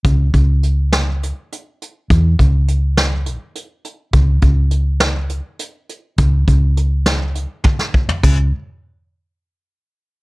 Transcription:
<<
  \new Staff \with { instrumentName = "Fingered electric bass" } { \clef bass \time 7/8 \key cis \minor \tempo 4 = 102 cis,8 cis,2 r4 | e,8 cis,2 r4 | cis,8 cis,2 r4 | cis,8 cis,2 r4 |
cis,8 r2. | }
  \new DrumStaff \with { instrumentName = "Drums" } \drummode { \time 7/8 <hh bd>8 <hh bd>8 hh8 <hh sn>8 hh8 hh8 hh8 | <hh bd>8 <hh bd>8 hh8 <hh sn>8 hh8 hh8 hh8 | <hh bd>8 <hh bd>8 hh8 <hh sn>8 hh8 hh8 hh8 | <hh bd>8 <hh bd>8 hh8 <hh sn>8 hh8 <bd tommh>16 sn16 bd16 tomfh16 |
<cymc bd>4. r4 r4 | }
>>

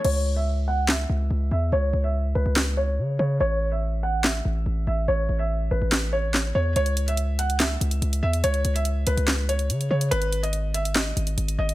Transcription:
<<
  \new Staff \with { instrumentName = "Felt piano" } { \time 4/4 \key cis \minor \tempo 4 = 143 cis''8. e''8. fis''8 e''4. e''8 | cis''8. e''8. b'4 cis''4 cis''8 | cis''8. e''8. fis''8 e''4. e''8 | cis''8. e''8. b'4 cis''4 cis''8 |
cis''8. e''8. fis''8 e''4. e''8 | cis''8. e''8. b'4 cis''4 cis''8 | b'8. dis''8. e''8 dis''4. dis''8 | }
  \new Staff \with { instrumentName = "808-style bass" } { \clef bass \time 4/4 \key cis \minor cis,2~ cis,8 cis,8 cis,8 e,8 | cis,8 cis,4 cis,16 cis,4~ cis,16 cis8 cis8 | a,,2~ a,,8 a,,8 a,,8 a,,8 | a,,8 a,,4 a,,16 a,,4.~ a,,16 e,8 |
cis,2~ cis,8 cis,8 cis,8 e,8 | cis,8 cis,4 cis,16 cis,4~ cis,16 cis8 cis8 | gis,,2~ gis,,8 gis,,8 gis,,8 gis,,8 | }
  \new DrumStaff \with { instrumentName = "Drums" } \drummode { \time 4/4 cymc4 r4 <hc sn>4 r4 | r4 r4 <hc sn>4 r4 | r4 r4 <hc sn>4 r4 | r4 r4 <hc sn>4 <hc sn>4 |
hh16 hh16 hh16 hh16 hh8 hh16 hh16 <hc hh sn>8 hh16 hh16 hh16 hh8 hh16 | hh16 hh16 hh16 hh16 hh8 hh16 hh16 <hc hh sn>8 hh16 hh16 hh16 hh8 hh16 | hh16 hh16 hh16 hh16 hh8 hh16 hh16 <hc hh sn>8 hh16 hh16 hh16 hh8 hh16 | }
>>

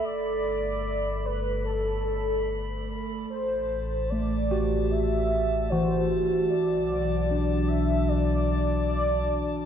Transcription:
<<
  \new Staff \with { instrumentName = "Synth texture" } { \time 4/4 \key a \dorian \tempo 4 = 75 b''1 | a''1~ | a''1 | }
  \new Staff \with { instrumentName = "Soft synth lead" } { \time 4/4 \key a \dorian d''4. b'8 a'4. r8 | c''4 d''4 e''4 c''8. r16 | d''4. e''8 d''4 d''8. r16 | }
  \new Staff \with { instrumentName = "Tine electric piano" } { \time 4/4 \key a \dorian r1 | r4 a8 <fis' g'>4. <e fis'>4~ | <e fis'>4 d'2 r4 | }
  \new Staff \with { instrumentName = "Synth drone" } { \time 4/4 \key a \dorian <a a'>1 | r1 | r1 | }
  \new Staff \with { instrumentName = "Sub bass" } { \clef bass \time 4/4 \key a \dorian g,,1 | a,,1 | b,,1 | }
>>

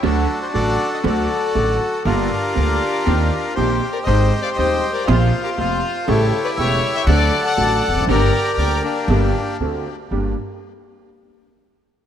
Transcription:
<<
  \new Staff \with { instrumentName = "Bandoneon" } { \time 4/4 \key g \minor \tempo 4 = 119 << { a'8. c''16 d''8. ees''16 d''4. r8 | bes'2. c''8. d''16 | ees''8. f''16 ees''8. d''16 c''8. bes'16 c''4 | cis''8. d''16 e''8. g''16 fis''8. a''8. r8 |
d''4 d''8 g'4. r4 | r1 | } \\ { <d' fis'>4 <fis' a'>4 <fis' a'>2 | <d' f'>2. g'4 | <g' c''>4 <g' c''>4 f'4 f'4 | <e' g'>4 <g' cis''>4 <a' d''>8. <d'' fis''>4~ <d'' fis''>16 |
<g' bes'>4. <bes d'>4. r4 | r1 | } >> }
  \new Staff \with { instrumentName = "Violin" } { \time 4/4 \key g \minor r2 a'4. r8 | g'2. g'8. bes'16 | c''8. d''16 c''8. bes'16 f'8. g'16 f'4 | a'8. b'16 cis''8. e''16 d''8. fis''8. r8 |
bes'4 bes'8 d'4. r4 | r1 | }
  \new Staff \with { instrumentName = "Grand piano" } { \clef bass \time 4/4 \key g \minor <d, d fis a fis'>8 r8 <a,, a, d fis a fis'>8 r8 <d, d fis a fis'>8 r8 <a,, a, d fis a fis'>8 r8 | <g,, g, d g bes f'>8 r8 <d, d g bes f'>8 r8 <ees, ees bes c' g'>8 r8 <bes,, bes, ees bes c' g'>8 r8 | <aes,, aes, ees aes c' g'>8 r8 <ees,, ees, ees aes c' g'>8 r8 <bes,, bes, c f bes f'>8 r8 <f,, f, c f bes f'>8 r8 | <a,, a, cis g a e'>8 r8 <e,, e, cis g a e'>8 r8 <d, d fis a fis'>8 r8 <a,, a, d fis a fis'>8 r32 e,32 f,32 fis,32 |
<g,, g, d g bes g'>8 r8 <d, d g bes g'>8 r8 <g,, g, d g bes g'>8 r8 <d, d a c' fis'>8 r8 | <g, bes d' g'>8 r2. r8 | }
  \new Staff \with { instrumentName = "Upright bass" } { \clef bass \time 4/4 \key g \minor d,16. r8 r32 a,,16. r8 r32 d,16. r8 r32 a,,16. r8 r32 | g,,16. r8 r32 d,16. r8 r32 ees,16. r8 r32 bes,,16. r8 r32 | aes,,16. r8 r32 ees,16. r8 r32 bes,,16. r8 r32 f,,16. r8 r32 | a,,16. r8 r32 e,,16. r8 r32 d,16. r8 r32 a,,16. r16 e,,32 f,,32 fis,,32 |
g,,16. r8 r32 d,16. r8 r32 g,,16. r8 r32 d,16. r8 r32 | g,,8 r2. r8 | }
>>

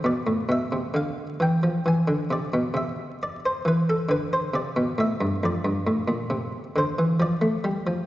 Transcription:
<<
  \new Staff \with { instrumentName = "Harpsichord" } { \time 3/4 \key a \minor \tempo 4 = 67 d''8 e''8 f''8 g''8 gis''8 d''8 | e''8 d''16 c''16 b'16 a'16 b'16 c''16 d''8 e''8 | \key f \major d''4. c''8 d''4 | }
  \new Staff \with { instrumentName = "Harpsichord" } { \clef bass \time 3/4 \key a \minor b,16 a,16 b,16 c16 d8 e16 f16 e16 d16 c16 b,16 | c4 e8 d8 c16 b,16 a,16 g,16 | \key f \major f,16 g,16 a,16 bes,16 c8 d16 e16 f16 a16 g16 f16 | }
>>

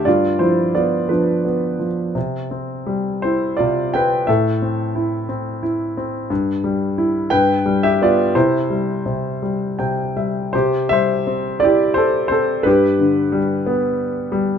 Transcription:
<<
  \new Staff \with { instrumentName = "Grand piano" } { \time 6/8 \key c \major \tempo 4. = 58 <f' d''>8 <e' c''>8 <f' d''>8 <d' b'>4 r8 | r4. <e' c''>8 <f' d''>8 <b' g''>8 | <a' e''>4. r4. | r4. <b' g''>8. <g' e''>16 <f' d''>8 |
<e' c''>2 g''8 e''8 | <g' c''>8 <c'' e''>4 <g' d''>8 <a' c''>8 <a' c''>8 | <g' b'>4 r2 | }
  \new Staff \with { instrumentName = "Grand piano" } { \clef bass \time 6/8 \key c \major g,8 f8 b8 f8 b8 f8 | c8 c'8 g8 c'8 c8 c'8 | a,8 c'8 e'8 c'8 e'8 c'8 | g,8 g8 e'8 g,8 g8 b8 |
c8 g8 c8 g8 c8 g8 | c8 g8 c'8 e'4 c'8 | g,8 d8 g8 b4 g8 | }
>>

